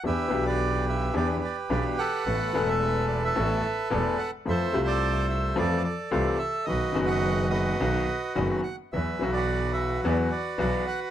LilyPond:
<<
  \new Staff \with { instrumentName = "Bandoneon" } { \time 4/4 \key e \minor \tempo 4 = 108 << { e''8. d''8. e''8 d''8 d''8 d''8 fis''8~ | fis''8. e''8. d''16 e''4~ e''16 d''8 fis''8 | e''8. d''8. e''8 d''8 d''8 d''8 e''8 | dis''8. fis''8. dis''4. dis''8 fis''8 |
e''8. d''8. e''8 d''8 d''8 d''8 fis''8 | } \\ { <g' b'>8. <g' b'>4~ <g' b'>16 <g' b'>4. <a' b'>8~ | <a' b'>8. <a' b'>4 <a' b'>2 r16 | <a' c''>8. a'4~ a'16 a'2 | <fis' b'>8. <b' dis''>8. <fis' b'>2 r8 |
b'8. <fis' b'>4~ <fis' b'>16 <fis' b'>2 | } >> }
  \new Staff \with { instrumentName = "Upright piano" } { \clef bass \time 4/4 \key e \minor <e, e b d' g'>8 <b,, b, e b d' g'>4. <e, e b d' g'>8 r8 <b,, b, e b d' g'>8 r8 | <a,, a, e a b a'>8 <e,, e, e a b a'>4. <a,, a, e a b a'>8 r8 <e,, e, e a b a'>8 r8 | <f, e f a c' f'>8 <c, c a c' e' f'>4. <f, e f a c' f'>8 r8 <c, c e a c' f'>8 r8 | <b,, b, dis fis b fis'>8 <fis,, fis, dis fis b fis'>4. <b,, b, dis fis b fis'>8 r8 <fis,, fis, dis fis b fis'>8 r8 |
<e, e fis b fis'>8 <b,, b, e fis b fis'>4. <e, e fis b fis'>8 r8 <b,, b, e fis b fis'>8 r8 | }
  \new Staff \with { instrumentName = "Double bass" } { \clef bass \time 4/4 \key e \minor e,8 b,,4. e,8 r8 b,,8 r8 | a,,8 e,,4. a,,8 r8 e,,8 r8 | f,8 c,4. f,8 r8 c,8 r8 | b,,8 fis,,4. b,,8 r8 fis,,8 r8 |
e,8 b,,4. e,8 r8 b,,8 r8 | }
>>